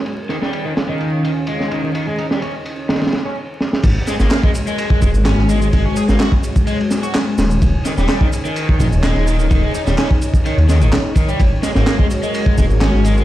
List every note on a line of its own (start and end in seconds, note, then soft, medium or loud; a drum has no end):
0.06 3.33 D#3 medium
0.06 3.33 C#4 medium
0.06 1.93 F5 medium
0.06 3.33 G#5 medium
0.06 ride medium
0.29 0.36 D#3 medium
0.29 snare soft
0.29 ride medium
0.42 0.64 G3 medium
0.42 snare soft
0.53 ride medium
0.65 0.71 D#3 medium
0.77 snare medium
0.77 ride medium
0.89 1.23 D#3 loud
1.00 ride medium
1.24 1.30 D#3 medium
1.24 ride medium
1.47 1.70 G#3 loud
1.47 ride medium
1.60 snare soft
1.71 1.82 D#3 loud
1.71 ride medium
1.83 1.89 D#3 medium
1.95 2.05 D#3 medium
1.95 3.35 D#5 medium
1.95 ride medium
2.07 2.17 G#3 medium
2.18 2.25 D#4 medium
2.18 ride medium
2.31 2.40 G3 medium
2.31 snare medium
2.42 2.52 C#4 loud
2.42 ride medium
2.66 ride medium
2.89 3.00 D#3 medium
2.89 snare medium
2.89 ride medium
2.96 snare medium
2.96 ride medium
3.01 snare medium
3.01 ride medium
3.07 snare medium
3.07 ride medium
3.12 snare loud
3.12 ride medium
3.26 3.35 C#4 medium
3.61 snare medium
3.73 snare medium
3.83 3.94 G#1 loud
3.83 7.58 G#3 medium
3.83 7.58 F#4 medium
3.83 5.71 A#4 medium
3.83 13.24 C#5 medium
3.83 kick loud
3.83 crash loud
3.83 ride medium
3.83 shaker soft
4.07 4.14 G#3 medium
4.07 snare soft
4.07 ride medium
4.07 shaker medium
4.20 4.29 G#1 medium
4.20 4.42 A#3 medium
4.20 snare soft
4.20 shaker soft
4.31 snare loud
4.31 clap loud
4.31 ride loud
4.31 shaker soft
4.43 4.49 G#3 medium
4.43 kick loud
4.55 ride medium
4.55 shaker medium
4.67 5.01 G#3 loud
4.67 shaker soft
4.78 ride medium
4.78 shaker soft
4.90 kick medium
5.02 5.12 D#1 medium
5.02 5.08 G#3 medium
5.02 kick loud
5.02 ride medium
5.02 shaker medium
5.14 5.33 G#1 medium
5.14 shaker soft
5.25 5.48 C#4 loud
5.25 snare loud
5.25 clap loud
5.25 ride medium
5.25 shaker soft
5.38 5.70 G#1 medium
5.38 snare soft
5.49 5.60 G#3 loud
5.49 ride medium
5.49 shaker medium
5.62 5.67 G#3 medium
5.62 shaker soft
5.73 5.83 G#1 loud
5.73 5.83 G#3 medium
5.73 11.36 G#5 medium
5.73 kick loud
5.73 ride medium
5.73 shaker soft
5.85 5.95 C#4 medium
5.96 6.03 G#4 medium
5.96 ride medium
5.96 shaker medium
6.09 6.18 G#1 medium
6.09 6.18 A#3 medium
6.09 snare medium
6.09 shaker soft
6.20 6.30 F#4 loud
6.20 snare loud
6.20 clap loud
6.20 ride medium
6.20 shaker soft
6.32 kick loud
6.43 ride medium
6.43 shaker medium
6.56 kick loud
6.56 shaker soft
6.67 6.78 G#3 medium
6.67 ride medium
6.67 shaker soft
6.80 ride soft
6.91 snare soft
6.91 ride medium
6.91 shaker medium
7.03 7.13 F#4 medium
7.03 ride soft
7.03 shaker soft
7.15 snare loud
7.15 clap loud
7.15 ride loud
7.15 shaker soft
7.38 7.57 D#1 medium
7.38 snare loud
7.38 ride medium
7.38 shaker medium
7.50 shaker soft
7.62 7.72 D#1 loud
7.62 11.36 D#4 medium
7.62 kick loud
7.62 ride medium
7.62 shaker soft
7.85 7.92 D#3 medium
7.85 snare soft
7.85 ride medium
7.85 shaker medium
7.98 8.07 D#1 medium
7.98 8.20 G3 medium
7.98 snare soft
7.98 shaker soft
8.09 snare loud
8.09 clap loud
8.09 ride medium
8.09 shaker soft
8.21 8.27 D#3 medium
8.21 kick loud
8.33 ride medium
8.33 shaker medium
8.45 8.79 D#3 loud
8.45 shaker soft
8.56 ride medium
8.56 shaker soft
8.69 kick loud
8.80 8.90 A#1 medium
8.80 8.86 D#3 medium
8.80 kick medium
8.80 ride medium
8.80 shaker medium
8.92 9.11 D#1 medium
8.92 shaker soft
9.03 9.26 G#3 loud
9.03 snare loud
9.03 clap loud
9.03 ride medium
9.03 shaker soft
9.14 9.47 D#1 medium
9.14 snare soft
9.27 9.38 D#3 loud
9.27 ride medium
9.27 shaker medium
9.39 9.45 D#3 medium
9.39 shaker soft
9.51 9.61 D#1 loud
9.51 9.61 D#3 medium
9.51 kick loud
9.51 ride medium
9.51 shaker soft
9.63 9.73 G#3 medium
9.74 9.81 D#4 medium
9.74 ride medium
9.74 shaker medium
9.87 9.96 D#1 medium
9.87 9.96 G3 medium
9.87 snare medium
9.87 shaker soft
9.98 10.08 C#4 loud
9.98 snare loud
9.98 clap loud
9.98 ride loud
9.98 shaker soft
10.11 kick loud
10.22 ride medium
10.22 shaker medium
10.34 kick loud
10.34 shaker soft
10.46 10.56 D#3 medium
10.46 ride medium
10.46 shaker soft
10.58 10.83 D#2 loud
10.58 ride soft
10.69 10.79 D#3 medium
10.69 snare soft
10.69 ride medium
10.69 shaker medium
10.81 10.91 G#1 medium
10.81 10.91 D#3 loud
10.81 ride soft
10.81 shaker soft
10.92 snare loud
10.92 clap loud
10.92 ride medium
10.92 shaker soft
11.16 11.28 D#3 medium
11.16 kick loud
11.16 ride medium
11.16 shaker medium
11.29 11.39 G3 loud
11.29 shaker soft
11.40 11.50 G#1 loud
11.40 13.24 G#3 medium
11.40 13.24 F#4 medium
11.40 13.24 A#4 medium
11.40 kick loud
11.40 ride medium
11.40 shaker soft
11.63 11.70 G#3 medium
11.63 snare soft
11.63 ride medium
11.63 shaker medium
11.75 11.85 G#1 medium
11.75 11.98 A#3 medium
11.75 snare medium
11.75 shaker soft
11.87 snare loud
11.87 clap loud
11.87 ride medium
11.87 shaker soft
11.99 12.05 G#3 medium
11.99 kick loud
12.11 ride medium
12.11 shaker medium
12.23 12.57 G#3 loud
12.23 shaker soft
12.34 ride loud
12.34 shaker soft
12.46 kick medium
12.58 12.68 D#1 medium
12.58 12.64 G#3 medium
12.58 kick medium
12.58 ride medium
12.58 shaker medium
12.70 12.89 G#1 medium
12.70 shaker soft
12.81 13.04 C#4 loud
12.81 snare loud
12.81 clap loud
12.81 ride medium
12.81 shaker soft
12.94 13.24 G#1 medium
12.94 snare soft
13.04 13.16 G#3 loud
13.04 ride medium
13.04 shaker medium
13.17 13.23 G#3 medium
13.17 shaker soft